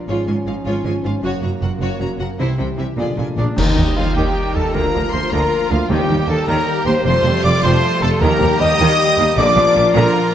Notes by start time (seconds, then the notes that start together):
Already playing: F3 F4
0.07 G#1 G#2 C#4 F4 C#5
0.27 G#1 G#2 F4 C#5 G#5
0.46 G#1 G#2 D#4 F4 G#4 F5
0.65 G#1 G#2 F4 C#5
0.85 G#1 G#2 C#4 F4 C#5 G#5
1.04 G#1 G#2 F4 G#4 F5
1.23 F#1 F#2 F#3 A#3 F#4 C#5
1.42 F#1 F#2 F#4 C#5 A#5
1.61 F#1 F#2 F4 F#4 A#4 F#5
1.80 F#1 F#2 F#4 C#5
2.00 F#1 F#2 C#4 F#4 C#5 A#5
2.19 F#1 F#2 F#4 A#4 F#5
2.39 C2 C3 E3 G3 E4 C5
2.58 C2 C3 C4 E4 C5 G5
2.77 C2 C3 E4 G4 E5
2.97 A#1 A#2 D3 G#3 F4 G#4 D5
3.05 A#2
3.13 A#2
3.17 A#1 A#2 D4 F4 D5 G#5
3.28 A#2
3.36 A#1 A#2 D4 F4 G#4 A#4 D5 F5
3.43 A#2
3.56 D#2 D#3 G3 D#4 D#5, concert bass drum, crash
3.67 D#4
3.77 D#2 D#3 A#3
3.87 G4
3.96 D#2 G3 F4 A#4 F5
4.06 G4
4.15 D#2 D#3 G3 A#3 G4 G5
4.26 A#5
4.35 G5
4.45 A#4
4.54 D#2 G3 G4 A4 A5
4.65 A#3
4.72 D2 D3 F3 A#3 F4 A#4 A#5
4.84 D4
4.93 D2 F3 A#3
5.04 F4
5.12 D2 A#3 A#4 C5 C6
5.23 F4
5.31 D2 D3 F3 A#3 F4 A#4 F5 A#5
5.43 A#5
5.53 F5
5.62 A#4
5.70 D2 A#3 F4 F5
5.81 A#3
5.88 D#2 D#3 G3 A#3 D#4 G4 G5
5.99 D#4
6.09 D#2 G3 A#3
6.18 G4
6.28 D#2 A#3 A4 A#4 A5
6.38 G4
6.47 D#2 D#3 G3 A#3 G4 A#4 G5 A#5
6.67 G5
6.77 A#4
6.86 D#2 A#3 G4 C5 C6
6.96 A#3
7.05 F1 F2 F3 G3 A3 F4 C5 C6
7.15 F4
7.24 F1 F2 G3
7.35 G4
7.43 F1 F2 A3 A4 D5 D6
7.55 G4
7.62 F1 F2 F3 G3 A3 C5 G5 C6
7.74 A5
7.82 G5
7.92 G4
8.01 F1 F2 A3 A4 A5
8.11 G4
8.20 D#2 D#3 G3 A#3 G4 A#4 A#5
8.31 D#4
8.39 D#2 G3 A#3
8.51 G4
8.60 D#2 A#3 A#4 D#5 D#6
8.70 G4
8.78 D#2 D#3 G5
8.98 G5
9.08 A#4
9.17 D#2 A#3 G4
9.28 A#3
9.37 A#1 A#2 D3 F3 A#3 D4 F4 D5 D6
9.47 F3
9.56 A#1 A#2 F3 A#3
9.66 F4
9.75 A#1 A#2 A#3 A#4
9.86 F4
9.94 A#1 A#2 D3 F3 A#3 F4 A#4 F5 A#5
10.14 F5
10.24 A#4